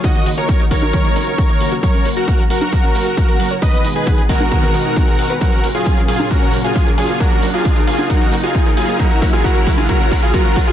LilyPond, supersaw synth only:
\new Staff \with { instrumentName = "Supersaw synth" } { \time 4/4 \key fis \major \tempo 4 = 134 <fis' dis''>8 r16 <ais' cis''>8 r16 <ais' cis''>2~ <ais' cis''>16 r16 | <ais' cis''>8 r16 <fis' ais'>8 r16 <fis' ais'>2~ <fis' ais'>16 r16 | <b' dis''>8 r16 <gis' b'>8 r16 <fis' ais'>2~ <fis' ais'>16 r16 | <fis' ais'>8 r16 <eis' gis'>8 r16 <eis' gis'>8 <fis' ais'>8 r16 <eis' gis'>8 r16 <eis' gis'>8 |
<fis' ais'>8 r16 <eis' gis'>8 r16 <eis' gis'>8 <fis' ais'>8 r16 <eis' gis'>8 r16 <eis' gis'>8 | <fis' ais'>8 r16 <eis' gis'>16 <fis' ais'>8 r16 <eis' gis'>16 <fis' ais'>8 r16 <eis' gis'>16 <fis' ais'>8 r16 <eis' gis'>16 | }